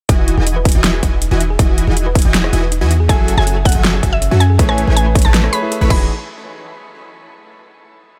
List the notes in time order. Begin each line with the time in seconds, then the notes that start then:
0.09 E1 E3 D#4 E4 F#4 D#5 G#5, kick, closed hi-hat
0.19 F#4
0.28 D#4, closed hi-hat
0.38 E1 E3 E4 F#4 G#4 D#5 G#5
0.47 D#4, closed hi-hat
0.56 B4
0.65 D#4, kick, closed hi-hat
0.69 closed hi-hat
0.72 E1 E3 E4 F#4 D#5 G#5, closed hi-hat
0.84 D#4, snare, closed hi-hat
0.94 G#4
1.03 E1 E3 D#4 E4 F#4 D#5 G#5, kick, closed hi-hat
1.13 B4
1.22 D#4, closed hi-hat
1.31 E1 E3 E4 F#4 D#5 G#5
1.41 D#4, closed hi-hat
1.50 G#4
1.59 E1 E3 D#4 E4 F#4 D#5 G#5, kick, closed hi-hat
1.69 F#4
1.78 D#4, closed hi-hat
1.87 E1 E3 E4 F#4 G#4 D#5 G#5
1.97 D#4, closed hi-hat
2.06 B4
2.15 D#4, kick, closed hi-hat
2.19 closed hi-hat
2.22 E1 E3 E4 F#4 D#5 G#5, closed hi-hat
2.34 D#4, snare, closed hi-hat
2.44 G#4, cross-stick
2.53 E1 E3 D#4 E4 F#4 D#5 G#5, closed hi-hat
2.63 B4
2.72 D#4, closed hi-hat
2.81 E2 E3 E4 F#4 D#5 G#5
2.90 D#4, closed hi-hat
3.00 G#4
3.08 F#1 F#3 C#4 E4 F#4 G#4 A4 E5 G#5, kick, closed hi-hat
3.19 F#4
3.28 C#4, closed hi-hat
3.36 F#1 F#3 E4 F#4 G#4 A4 E5 G#5
3.47 C#4, closed hi-hat
3.56 A4
3.65 C#4 F#5, kick, closed hi-hat
3.69 closed hi-hat
3.72 F#1 F#3 F#4 A4 E5 G#5, closed hi-hat
3.84 C#4, snare, closed hi-hat
3.94 G#4
4.03 F#1 F#3 C#4 F#4 A4 E5 G#5, kick, closed hi-hat
4.12 A4 E5
4.21 C#4, closed hi-hat
4.31 F#2 F#3 F#4 A4 E5 G#5
4.40 C#4 G#5, closed hi-hat
4.50 G#4
4.58 A1 A3 C#4 E4 G#4 B4 C#5 G#5, kick, closed hi-hat
4.69 G#4 G#5, cross-stick
4.78 C#4, closed hi-hat
4.86 A1 A3 E4 G#4 A4 B4 C#5 G#5
4.90 C#5
4.96 C#4 G#5, closed hi-hat
5.06 B4
5.15 C#4, kick, closed hi-hat
5.19 closed hi-hat
5.22 A1 A3 E4 G#4 B4 C#5 G#5 A5, closed hi-hat
5.34 C#4, snare, closed hi-hat
5.44 A4, cross-stick
5.52 A3 G#4 A4 B4 C#5 B5, closed hi-hat
5.62 A3 E4 G#4 B4 E5
5.72 A4, closed hi-hat
5.81 A1 A3 C#4 E4 B4 C#5 B5
5.88 E1 E3 D#4 E4 F#4 D#5 G#5 B5, kick, crash
5.92 F#4 G#4